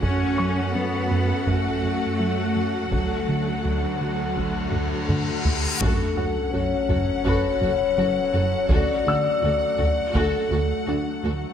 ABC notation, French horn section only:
X:1
M:4/4
L:1/8
Q:1/4=83
K:F#m
V:1 name="French horn section"
[FA]8- | [FA]6- [FA] =G | A2 c2 c4 | d4 A2 z2 |]